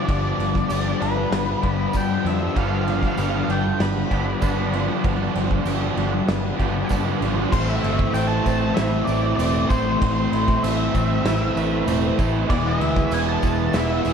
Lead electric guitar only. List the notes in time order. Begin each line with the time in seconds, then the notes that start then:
0.10 D5
1.02 B4
1.97 G5
2.27 E5
2.58 F5
3.20 F5
3.51 G5
3.81 B5
7.52 C5
7.69 E5
8.14 G5
8.27 A5
8.75 E5
9.05 D5
9.37 D5
9.69 C5
10.15 C5
10.63 E5
12.50 D5
12.66 E5
13.14 G#5
13.28 A5
13.77 E5